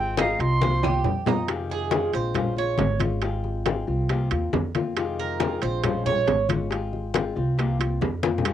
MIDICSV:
0, 0, Header, 1, 7, 480
1, 0, Start_track
1, 0, Key_signature, -4, "minor"
1, 0, Tempo, 435098
1, 1642, Time_signature, 4, 2, 24, 8
1, 9415, End_track
2, 0, Start_track
2, 0, Title_t, "Flute"
2, 0, Program_c, 0, 73
2, 0, Note_on_c, 0, 79, 89
2, 196, Note_off_c, 0, 79, 0
2, 217, Note_on_c, 0, 77, 91
2, 451, Note_on_c, 0, 84, 106
2, 468, Note_off_c, 0, 77, 0
2, 1167, Note_off_c, 0, 84, 0
2, 9415, End_track
3, 0, Start_track
3, 0, Title_t, "Cuban tres"
3, 0, Program_c, 1, 25
3, 0, Note_on_c, 1, 60, 84
3, 191, Note_off_c, 1, 60, 0
3, 212, Note_on_c, 1, 63, 71
3, 673, Note_off_c, 1, 63, 0
3, 693, Note_on_c, 1, 72, 63
3, 921, Note_off_c, 1, 72, 0
3, 929, Note_on_c, 1, 67, 81
3, 1391, Note_off_c, 1, 67, 0
3, 1412, Note_on_c, 1, 63, 75
3, 1640, Note_off_c, 1, 63, 0
3, 1890, Note_on_c, 1, 68, 87
3, 2333, Note_off_c, 1, 68, 0
3, 2367, Note_on_c, 1, 72, 85
3, 2812, Note_off_c, 1, 72, 0
3, 2850, Note_on_c, 1, 73, 93
3, 3293, Note_off_c, 1, 73, 0
3, 5728, Note_on_c, 1, 70, 85
3, 6173, Note_off_c, 1, 70, 0
3, 6206, Note_on_c, 1, 72, 83
3, 6652, Note_off_c, 1, 72, 0
3, 6685, Note_on_c, 1, 73, 108
3, 7131, Note_off_c, 1, 73, 0
3, 9415, End_track
4, 0, Start_track
4, 0, Title_t, "Nylon-string guitar"
4, 0, Program_c, 2, 24
4, 0, Note_on_c, 2, 56, 68
4, 0, Note_on_c, 2, 60, 74
4, 0, Note_on_c, 2, 65, 67
4, 177, Note_off_c, 2, 56, 0
4, 190, Note_on_c, 2, 56, 66
4, 192, Note_off_c, 2, 60, 0
4, 198, Note_off_c, 2, 65, 0
4, 203, Note_on_c, 2, 60, 70
4, 214, Note_on_c, 2, 65, 74
4, 414, Note_off_c, 2, 65, 0
4, 426, Note_off_c, 2, 56, 0
4, 427, Note_on_c, 2, 65, 57
4, 433, Note_off_c, 2, 60, 0
4, 453, Note_on_c, 2, 60, 42
4, 665, Note_off_c, 2, 65, 0
4, 666, Note_on_c, 2, 48, 64
4, 673, Note_on_c, 2, 53, 72
4, 674, Note_off_c, 2, 60, 0
4, 679, Note_on_c, 2, 58, 73
4, 687, Note_on_c, 2, 60, 68
4, 689, Note_on_c, 2, 65, 84
4, 895, Note_off_c, 2, 65, 0
4, 904, Note_off_c, 2, 48, 0
4, 908, Note_off_c, 2, 53, 0
4, 908, Note_on_c, 2, 65, 47
4, 911, Note_off_c, 2, 58, 0
4, 911, Note_off_c, 2, 60, 0
4, 925, Note_on_c, 2, 60, 50
4, 932, Note_on_c, 2, 58, 38
4, 1144, Note_off_c, 2, 60, 0
4, 1145, Note_off_c, 2, 58, 0
4, 1145, Note_off_c, 2, 65, 0
4, 1387, Note_on_c, 2, 65, 57
4, 1401, Note_on_c, 2, 60, 50
4, 1412, Note_on_c, 2, 58, 45
4, 1625, Note_off_c, 2, 65, 0
4, 1625, Note_on_c, 2, 48, 71
4, 1632, Note_off_c, 2, 60, 0
4, 1633, Note_on_c, 2, 51, 63
4, 1637, Note_off_c, 2, 58, 0
4, 1641, Note_on_c, 2, 56, 62
4, 1645, Note_on_c, 2, 60, 69
4, 1648, Note_on_c, 2, 65, 66
4, 2094, Note_off_c, 2, 48, 0
4, 2103, Note_off_c, 2, 51, 0
4, 2108, Note_on_c, 2, 48, 60
4, 2109, Note_off_c, 2, 56, 0
4, 2114, Note_off_c, 2, 60, 0
4, 2115, Note_off_c, 2, 65, 0
4, 2116, Note_on_c, 2, 51, 74
4, 2122, Note_on_c, 2, 56, 73
4, 2128, Note_on_c, 2, 60, 81
4, 2134, Note_on_c, 2, 65, 82
4, 2335, Note_off_c, 2, 65, 0
4, 2346, Note_off_c, 2, 48, 0
4, 2348, Note_off_c, 2, 60, 0
4, 2349, Note_on_c, 2, 65, 51
4, 2350, Note_off_c, 2, 51, 0
4, 2353, Note_off_c, 2, 56, 0
4, 2361, Note_on_c, 2, 60, 46
4, 2373, Note_on_c, 2, 56, 40
4, 2584, Note_off_c, 2, 56, 0
4, 2585, Note_on_c, 2, 53, 68
4, 2586, Note_off_c, 2, 65, 0
4, 2592, Note_off_c, 2, 60, 0
4, 2598, Note_on_c, 2, 56, 62
4, 2607, Note_on_c, 2, 61, 60
4, 2614, Note_on_c, 2, 65, 76
4, 2819, Note_off_c, 2, 65, 0
4, 2825, Note_off_c, 2, 53, 0
4, 2831, Note_off_c, 2, 56, 0
4, 2832, Note_on_c, 2, 65, 45
4, 2835, Note_off_c, 2, 61, 0
4, 2847, Note_on_c, 2, 61, 46
4, 2859, Note_on_c, 2, 56, 33
4, 3067, Note_off_c, 2, 56, 0
4, 3067, Note_off_c, 2, 61, 0
4, 3068, Note_off_c, 2, 65, 0
4, 3314, Note_on_c, 2, 65, 57
4, 3327, Note_on_c, 2, 61, 49
4, 3337, Note_on_c, 2, 56, 42
4, 3538, Note_off_c, 2, 56, 0
4, 3549, Note_off_c, 2, 65, 0
4, 3551, Note_on_c, 2, 56, 69
4, 3556, Note_off_c, 2, 61, 0
4, 3563, Note_on_c, 2, 60, 67
4, 3576, Note_on_c, 2, 65, 75
4, 4016, Note_off_c, 2, 56, 0
4, 4029, Note_on_c, 2, 56, 60
4, 4030, Note_off_c, 2, 60, 0
4, 4041, Note_off_c, 2, 65, 0
4, 4043, Note_on_c, 2, 60, 84
4, 4055, Note_on_c, 2, 65, 77
4, 4259, Note_off_c, 2, 65, 0
4, 4267, Note_off_c, 2, 56, 0
4, 4273, Note_on_c, 2, 65, 49
4, 4274, Note_off_c, 2, 60, 0
4, 4295, Note_on_c, 2, 60, 46
4, 4509, Note_off_c, 2, 65, 0
4, 4512, Note_on_c, 2, 48, 69
4, 4516, Note_off_c, 2, 60, 0
4, 4517, Note_on_c, 2, 53, 67
4, 4521, Note_on_c, 2, 58, 65
4, 4529, Note_on_c, 2, 60, 73
4, 4538, Note_on_c, 2, 65, 82
4, 4741, Note_off_c, 2, 65, 0
4, 4748, Note_off_c, 2, 48, 0
4, 4751, Note_off_c, 2, 53, 0
4, 4753, Note_off_c, 2, 58, 0
4, 4754, Note_off_c, 2, 60, 0
4, 4754, Note_on_c, 2, 65, 42
4, 4767, Note_on_c, 2, 60, 41
4, 4778, Note_on_c, 2, 58, 41
4, 4989, Note_off_c, 2, 65, 0
4, 4992, Note_off_c, 2, 58, 0
4, 4996, Note_off_c, 2, 60, 0
4, 5242, Note_on_c, 2, 65, 55
4, 5256, Note_on_c, 2, 60, 47
4, 5264, Note_on_c, 2, 58, 46
4, 5474, Note_off_c, 2, 65, 0
4, 5475, Note_on_c, 2, 48, 72
4, 5481, Note_off_c, 2, 60, 0
4, 5481, Note_on_c, 2, 51, 69
4, 5485, Note_off_c, 2, 58, 0
4, 5489, Note_on_c, 2, 56, 66
4, 5493, Note_on_c, 2, 60, 67
4, 5496, Note_on_c, 2, 65, 79
4, 5943, Note_off_c, 2, 48, 0
4, 5949, Note_off_c, 2, 51, 0
4, 5956, Note_on_c, 2, 48, 67
4, 5957, Note_off_c, 2, 56, 0
4, 5959, Note_off_c, 2, 60, 0
4, 5961, Note_off_c, 2, 65, 0
4, 5963, Note_on_c, 2, 51, 69
4, 5971, Note_on_c, 2, 56, 76
4, 5973, Note_on_c, 2, 60, 83
4, 5982, Note_on_c, 2, 65, 86
4, 6187, Note_off_c, 2, 65, 0
4, 6191, Note_off_c, 2, 48, 0
4, 6194, Note_off_c, 2, 51, 0
4, 6198, Note_off_c, 2, 56, 0
4, 6199, Note_off_c, 2, 60, 0
4, 6200, Note_on_c, 2, 65, 52
4, 6214, Note_on_c, 2, 60, 51
4, 6227, Note_on_c, 2, 56, 43
4, 6427, Note_off_c, 2, 56, 0
4, 6431, Note_on_c, 2, 53, 70
4, 6433, Note_off_c, 2, 65, 0
4, 6440, Note_off_c, 2, 60, 0
4, 6441, Note_on_c, 2, 56, 75
4, 6448, Note_on_c, 2, 61, 72
4, 6458, Note_on_c, 2, 65, 71
4, 6661, Note_off_c, 2, 65, 0
4, 6668, Note_off_c, 2, 53, 0
4, 6672, Note_off_c, 2, 61, 0
4, 6673, Note_off_c, 2, 56, 0
4, 6675, Note_on_c, 2, 65, 42
4, 6685, Note_on_c, 2, 61, 44
4, 6696, Note_on_c, 2, 56, 41
4, 6907, Note_off_c, 2, 56, 0
4, 6910, Note_off_c, 2, 61, 0
4, 6910, Note_off_c, 2, 65, 0
4, 7156, Note_on_c, 2, 65, 50
4, 7169, Note_on_c, 2, 61, 58
4, 7179, Note_on_c, 2, 56, 41
4, 7379, Note_off_c, 2, 56, 0
4, 7390, Note_off_c, 2, 65, 0
4, 7392, Note_on_c, 2, 56, 60
4, 7397, Note_off_c, 2, 61, 0
4, 7404, Note_on_c, 2, 60, 70
4, 7419, Note_on_c, 2, 65, 72
4, 7862, Note_off_c, 2, 56, 0
4, 7874, Note_off_c, 2, 60, 0
4, 7875, Note_on_c, 2, 56, 79
4, 7882, Note_off_c, 2, 65, 0
4, 7890, Note_on_c, 2, 60, 74
4, 7901, Note_on_c, 2, 65, 83
4, 8103, Note_off_c, 2, 65, 0
4, 8110, Note_off_c, 2, 56, 0
4, 8116, Note_on_c, 2, 65, 49
4, 8117, Note_off_c, 2, 60, 0
4, 8141, Note_on_c, 2, 60, 39
4, 8350, Note_off_c, 2, 65, 0
4, 8357, Note_on_c, 2, 48, 70
4, 8362, Note_off_c, 2, 60, 0
4, 8366, Note_on_c, 2, 53, 72
4, 8371, Note_on_c, 2, 58, 77
4, 8377, Note_on_c, 2, 60, 77
4, 8383, Note_on_c, 2, 65, 69
4, 8586, Note_off_c, 2, 65, 0
4, 8590, Note_off_c, 2, 48, 0
4, 8595, Note_off_c, 2, 53, 0
4, 8598, Note_off_c, 2, 58, 0
4, 8599, Note_on_c, 2, 65, 46
4, 8601, Note_off_c, 2, 60, 0
4, 8613, Note_on_c, 2, 60, 44
4, 8624, Note_on_c, 2, 58, 39
4, 8830, Note_off_c, 2, 58, 0
4, 8832, Note_off_c, 2, 60, 0
4, 8832, Note_off_c, 2, 65, 0
4, 9081, Note_on_c, 2, 65, 52
4, 9094, Note_on_c, 2, 60, 47
4, 9106, Note_on_c, 2, 58, 45
4, 9312, Note_off_c, 2, 65, 0
4, 9315, Note_on_c, 2, 48, 66
4, 9319, Note_off_c, 2, 60, 0
4, 9322, Note_on_c, 2, 51, 75
4, 9325, Note_off_c, 2, 58, 0
4, 9329, Note_on_c, 2, 56, 75
4, 9335, Note_on_c, 2, 60, 62
4, 9343, Note_on_c, 2, 65, 71
4, 9415, Note_off_c, 2, 48, 0
4, 9415, Note_off_c, 2, 51, 0
4, 9415, Note_off_c, 2, 56, 0
4, 9415, Note_off_c, 2, 60, 0
4, 9415, Note_off_c, 2, 65, 0
4, 9415, End_track
5, 0, Start_track
5, 0, Title_t, "Upright bass"
5, 0, Program_c, 3, 32
5, 0, Note_on_c, 3, 32, 96
5, 370, Note_off_c, 3, 32, 0
5, 434, Note_on_c, 3, 36, 95
5, 1114, Note_off_c, 3, 36, 0
5, 1153, Note_on_c, 3, 41, 96
5, 2290, Note_off_c, 3, 41, 0
5, 2358, Note_on_c, 3, 34, 86
5, 3037, Note_off_c, 3, 34, 0
5, 3076, Note_on_c, 3, 32, 87
5, 4212, Note_off_c, 3, 32, 0
5, 4271, Note_on_c, 3, 36, 90
5, 4724, Note_off_c, 3, 36, 0
5, 4760, Note_on_c, 3, 39, 77
5, 4985, Note_off_c, 3, 39, 0
5, 4998, Note_on_c, 3, 41, 91
5, 6133, Note_off_c, 3, 41, 0
5, 6205, Note_on_c, 3, 34, 89
5, 6881, Note_off_c, 3, 34, 0
5, 6919, Note_on_c, 3, 32, 79
5, 8053, Note_off_c, 3, 32, 0
5, 8124, Note_on_c, 3, 36, 91
5, 8799, Note_off_c, 3, 36, 0
5, 8844, Note_on_c, 3, 41, 89
5, 9415, Note_off_c, 3, 41, 0
5, 9415, End_track
6, 0, Start_track
6, 0, Title_t, "Muted nylon-string guitar strokes"
6, 1150, Note_on_c, 9, 29, 66
6, 1261, Note_off_c, 9, 29, 0
6, 3073, Note_on_c, 9, 29, 64
6, 3183, Note_off_c, 9, 29, 0
6, 4996, Note_on_c, 9, 29, 74
6, 5106, Note_off_c, 9, 29, 0
6, 6914, Note_on_c, 9, 29, 65
6, 7025, Note_off_c, 9, 29, 0
6, 8836, Note_on_c, 9, 29, 60
6, 8947, Note_off_c, 9, 29, 0
6, 9415, End_track
7, 0, Start_track
7, 0, Title_t, "Drums"
7, 193, Note_on_c, 9, 63, 93
7, 199, Note_on_c, 9, 60, 59
7, 203, Note_on_c, 9, 75, 62
7, 206, Note_on_c, 9, 65, 98
7, 206, Note_on_c, 9, 66, 61
7, 303, Note_off_c, 9, 63, 0
7, 309, Note_off_c, 9, 60, 0
7, 313, Note_off_c, 9, 75, 0
7, 317, Note_off_c, 9, 65, 0
7, 317, Note_off_c, 9, 66, 0
7, 435, Note_on_c, 9, 63, 38
7, 443, Note_on_c, 9, 60, 36
7, 443, Note_on_c, 9, 65, 64
7, 546, Note_off_c, 9, 63, 0
7, 554, Note_off_c, 9, 60, 0
7, 554, Note_off_c, 9, 65, 0
7, 680, Note_on_c, 9, 63, 89
7, 684, Note_on_c, 9, 60, 68
7, 790, Note_off_c, 9, 63, 0
7, 795, Note_off_c, 9, 60, 0
7, 917, Note_on_c, 9, 60, 83
7, 919, Note_on_c, 9, 65, 77
7, 921, Note_on_c, 9, 63, 73
7, 926, Note_on_c, 9, 75, 66
7, 1028, Note_off_c, 9, 60, 0
7, 1029, Note_off_c, 9, 65, 0
7, 1031, Note_off_c, 9, 63, 0
7, 1036, Note_off_c, 9, 75, 0
7, 1151, Note_on_c, 9, 64, 70
7, 1152, Note_on_c, 9, 65, 66
7, 1261, Note_off_c, 9, 64, 0
7, 1262, Note_off_c, 9, 65, 0
7, 1393, Note_on_c, 9, 64, 91
7, 1400, Note_on_c, 9, 61, 69
7, 1401, Note_on_c, 9, 66, 99
7, 1503, Note_off_c, 9, 64, 0
7, 1510, Note_off_c, 9, 61, 0
7, 1511, Note_off_c, 9, 66, 0
7, 1633, Note_on_c, 9, 63, 33
7, 1635, Note_on_c, 9, 65, 91
7, 1638, Note_on_c, 9, 60, 68
7, 1743, Note_off_c, 9, 63, 0
7, 1746, Note_off_c, 9, 65, 0
7, 1749, Note_off_c, 9, 60, 0
7, 1873, Note_on_c, 9, 63, 42
7, 1983, Note_off_c, 9, 63, 0
7, 2107, Note_on_c, 9, 63, 94
7, 2118, Note_on_c, 9, 60, 59
7, 2118, Note_on_c, 9, 65, 67
7, 2118, Note_on_c, 9, 66, 53
7, 2217, Note_off_c, 9, 63, 0
7, 2228, Note_off_c, 9, 60, 0
7, 2228, Note_off_c, 9, 65, 0
7, 2228, Note_off_c, 9, 66, 0
7, 2347, Note_on_c, 9, 63, 36
7, 2355, Note_on_c, 9, 65, 65
7, 2457, Note_off_c, 9, 63, 0
7, 2465, Note_off_c, 9, 65, 0
7, 2587, Note_on_c, 9, 63, 31
7, 2587, Note_on_c, 9, 64, 81
7, 2595, Note_on_c, 9, 60, 65
7, 2595, Note_on_c, 9, 65, 91
7, 2697, Note_off_c, 9, 63, 0
7, 2697, Note_off_c, 9, 64, 0
7, 2705, Note_off_c, 9, 65, 0
7, 2706, Note_off_c, 9, 60, 0
7, 2829, Note_on_c, 9, 63, 33
7, 2940, Note_off_c, 9, 63, 0
7, 3063, Note_on_c, 9, 63, 76
7, 3074, Note_on_c, 9, 65, 64
7, 3074, Note_on_c, 9, 66, 73
7, 3077, Note_on_c, 9, 60, 69
7, 3077, Note_on_c, 9, 61, 82
7, 3174, Note_off_c, 9, 63, 0
7, 3184, Note_off_c, 9, 65, 0
7, 3184, Note_off_c, 9, 66, 0
7, 3188, Note_off_c, 9, 60, 0
7, 3188, Note_off_c, 9, 61, 0
7, 3306, Note_on_c, 9, 63, 73
7, 3314, Note_on_c, 9, 65, 91
7, 3416, Note_off_c, 9, 63, 0
7, 3425, Note_off_c, 9, 65, 0
7, 3548, Note_on_c, 9, 63, 31
7, 3549, Note_on_c, 9, 65, 69
7, 3558, Note_on_c, 9, 60, 60
7, 3658, Note_off_c, 9, 63, 0
7, 3660, Note_off_c, 9, 65, 0
7, 3668, Note_off_c, 9, 60, 0
7, 3794, Note_on_c, 9, 63, 37
7, 3803, Note_on_c, 9, 60, 31
7, 3905, Note_off_c, 9, 63, 0
7, 3913, Note_off_c, 9, 60, 0
7, 4034, Note_on_c, 9, 65, 86
7, 4034, Note_on_c, 9, 66, 64
7, 4039, Note_on_c, 9, 63, 84
7, 4041, Note_on_c, 9, 60, 59
7, 4145, Note_off_c, 9, 65, 0
7, 4145, Note_off_c, 9, 66, 0
7, 4150, Note_off_c, 9, 63, 0
7, 4151, Note_off_c, 9, 60, 0
7, 4280, Note_on_c, 9, 60, 36
7, 4282, Note_on_c, 9, 63, 35
7, 4391, Note_off_c, 9, 60, 0
7, 4392, Note_off_c, 9, 63, 0
7, 4515, Note_on_c, 9, 65, 72
7, 4518, Note_on_c, 9, 63, 34
7, 4521, Note_on_c, 9, 60, 65
7, 4625, Note_off_c, 9, 65, 0
7, 4628, Note_off_c, 9, 63, 0
7, 4631, Note_off_c, 9, 60, 0
7, 4753, Note_on_c, 9, 65, 89
7, 4759, Note_on_c, 9, 60, 36
7, 4764, Note_on_c, 9, 63, 34
7, 4864, Note_off_c, 9, 65, 0
7, 4870, Note_off_c, 9, 60, 0
7, 4874, Note_off_c, 9, 63, 0
7, 4996, Note_on_c, 9, 63, 75
7, 4998, Note_on_c, 9, 60, 70
7, 4998, Note_on_c, 9, 61, 88
7, 5003, Note_on_c, 9, 66, 78
7, 5107, Note_off_c, 9, 63, 0
7, 5108, Note_off_c, 9, 60, 0
7, 5108, Note_off_c, 9, 61, 0
7, 5114, Note_off_c, 9, 66, 0
7, 5237, Note_on_c, 9, 65, 67
7, 5240, Note_on_c, 9, 63, 70
7, 5347, Note_off_c, 9, 65, 0
7, 5350, Note_off_c, 9, 63, 0
7, 5477, Note_on_c, 9, 65, 88
7, 5481, Note_on_c, 9, 60, 63
7, 5482, Note_on_c, 9, 63, 33
7, 5588, Note_off_c, 9, 65, 0
7, 5591, Note_off_c, 9, 60, 0
7, 5592, Note_off_c, 9, 63, 0
7, 5723, Note_on_c, 9, 63, 38
7, 5833, Note_off_c, 9, 63, 0
7, 5957, Note_on_c, 9, 60, 58
7, 5957, Note_on_c, 9, 65, 71
7, 5957, Note_on_c, 9, 66, 61
7, 5959, Note_on_c, 9, 63, 87
7, 6067, Note_off_c, 9, 60, 0
7, 6067, Note_off_c, 9, 65, 0
7, 6067, Note_off_c, 9, 66, 0
7, 6069, Note_off_c, 9, 63, 0
7, 6197, Note_on_c, 9, 65, 73
7, 6205, Note_on_c, 9, 63, 36
7, 6307, Note_off_c, 9, 65, 0
7, 6316, Note_off_c, 9, 63, 0
7, 6438, Note_on_c, 9, 65, 99
7, 6439, Note_on_c, 9, 60, 66
7, 6446, Note_on_c, 9, 63, 29
7, 6446, Note_on_c, 9, 64, 78
7, 6548, Note_off_c, 9, 65, 0
7, 6549, Note_off_c, 9, 60, 0
7, 6556, Note_off_c, 9, 63, 0
7, 6556, Note_off_c, 9, 64, 0
7, 6692, Note_on_c, 9, 63, 36
7, 6692, Note_on_c, 9, 64, 70
7, 6802, Note_off_c, 9, 63, 0
7, 6802, Note_off_c, 9, 64, 0
7, 6922, Note_on_c, 9, 60, 64
7, 6922, Note_on_c, 9, 61, 86
7, 6925, Note_on_c, 9, 65, 58
7, 6925, Note_on_c, 9, 66, 80
7, 6930, Note_on_c, 9, 63, 63
7, 7033, Note_off_c, 9, 60, 0
7, 7033, Note_off_c, 9, 61, 0
7, 7036, Note_off_c, 9, 65, 0
7, 7036, Note_off_c, 9, 66, 0
7, 7041, Note_off_c, 9, 63, 0
7, 7161, Note_on_c, 9, 63, 84
7, 7168, Note_on_c, 9, 65, 101
7, 7272, Note_off_c, 9, 63, 0
7, 7278, Note_off_c, 9, 65, 0
7, 7400, Note_on_c, 9, 60, 61
7, 7404, Note_on_c, 9, 63, 33
7, 7415, Note_on_c, 9, 65, 71
7, 7510, Note_off_c, 9, 60, 0
7, 7514, Note_off_c, 9, 63, 0
7, 7525, Note_off_c, 9, 65, 0
7, 7645, Note_on_c, 9, 60, 33
7, 7645, Note_on_c, 9, 63, 39
7, 7755, Note_off_c, 9, 60, 0
7, 7755, Note_off_c, 9, 63, 0
7, 7878, Note_on_c, 9, 63, 93
7, 7883, Note_on_c, 9, 60, 53
7, 7893, Note_on_c, 9, 65, 91
7, 7893, Note_on_c, 9, 66, 54
7, 7988, Note_off_c, 9, 63, 0
7, 7993, Note_off_c, 9, 60, 0
7, 8004, Note_off_c, 9, 65, 0
7, 8004, Note_off_c, 9, 66, 0
7, 8132, Note_on_c, 9, 60, 34
7, 8133, Note_on_c, 9, 63, 33
7, 8242, Note_off_c, 9, 60, 0
7, 8243, Note_off_c, 9, 63, 0
7, 8363, Note_on_c, 9, 63, 33
7, 8370, Note_on_c, 9, 60, 65
7, 8375, Note_on_c, 9, 65, 74
7, 8473, Note_off_c, 9, 63, 0
7, 8480, Note_off_c, 9, 60, 0
7, 8486, Note_off_c, 9, 65, 0
7, 8602, Note_on_c, 9, 63, 30
7, 8608, Note_on_c, 9, 60, 36
7, 8612, Note_on_c, 9, 65, 93
7, 8712, Note_off_c, 9, 63, 0
7, 8718, Note_off_c, 9, 60, 0
7, 8722, Note_off_c, 9, 65, 0
7, 8840, Note_on_c, 9, 63, 64
7, 8847, Note_on_c, 9, 60, 72
7, 8847, Note_on_c, 9, 61, 78
7, 8848, Note_on_c, 9, 66, 75
7, 8951, Note_off_c, 9, 63, 0
7, 8957, Note_off_c, 9, 60, 0
7, 8957, Note_off_c, 9, 61, 0
7, 8958, Note_off_c, 9, 66, 0
7, 9080, Note_on_c, 9, 63, 98
7, 9081, Note_on_c, 9, 65, 70
7, 9190, Note_off_c, 9, 63, 0
7, 9192, Note_off_c, 9, 65, 0
7, 9246, Note_on_c, 9, 64, 76
7, 9323, Note_on_c, 9, 60, 66
7, 9323, Note_on_c, 9, 65, 103
7, 9324, Note_on_c, 9, 63, 30
7, 9356, Note_off_c, 9, 64, 0
7, 9415, Note_off_c, 9, 60, 0
7, 9415, Note_off_c, 9, 63, 0
7, 9415, Note_off_c, 9, 65, 0
7, 9415, End_track
0, 0, End_of_file